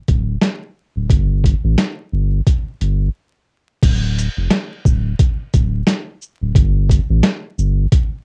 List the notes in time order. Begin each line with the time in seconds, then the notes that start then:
0.08 D1, kick, closed hi-hat
0.42 snare, closed hi-hat
0.96 D1
1.10 G1, kick, closed hi-hat
1.44 kick, closed hi-hat
1.64 A1
1.78 snare, closed hi-hat
2.12 G1
2.47 kick, closed hi-hat
2.81 G1, closed hi-hat
3.82 D1, kick, closed hi-hat, crash
4.18 closed hi-hat, shaker
4.37 F1
4.50 snare, closed hi-hat
4.85 D1, kick, shaker
5.19 kick, closed hi-hat
5.54 D1, kick, closed hi-hat, shaker
5.87 snare, closed hi-hat
6.22 shaker
6.41 D1
6.55 G1, kick, closed hi-hat
6.90 kick, closed hi-hat, shaker
7.10 A1
7.23 snare, closed hi-hat
7.58 G1, shaker
7.92 kick, closed hi-hat